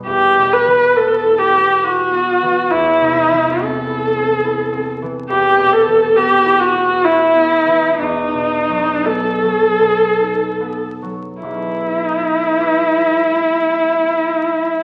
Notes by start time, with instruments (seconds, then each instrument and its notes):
Already playing: harp B2 G3 B3
0.06 harp E2, viola G4
0.37 harp B2
0.53 viola B4
0.66 harp E3
0.95 harp B3, viola A4
1.24 harp E4
1.39 viola G4
1.54 harp B3
1.84 harp E4, viola F#4
2.13 harp B3
2.42 harp E3
2.71 harp E2, viola E4
3.00 harp C3
3.32 harp E3
3.62 harp C4, viola A4
3.90 harp E4
4.17 harp C4
4.44 harp E4
4.73 harp C4
5.02 harp E3
5.30 harp E2, viola G4
5.58 harp B2
5.73 viola A4
5.87 harp E3
6.16 harp B3, viola G4
6.45 harp E4
6.59 viola F#4
6.74 harp B3
7.04 viola E4, harp E4
7.35 harp B3
7.66 harp E3
7.99 harp E2, viola D#4
8.34 harp B2
8.69 harp F#3
9.05 harp B3, viola A4
9.43 harp F#3
9.79 harp B2
10.20 harp D#4
10.60 harp B3
11.02 harp F#3
11.41 harp E1 B1, viola E4
12.58 harp E4 G4
12.62 harp B4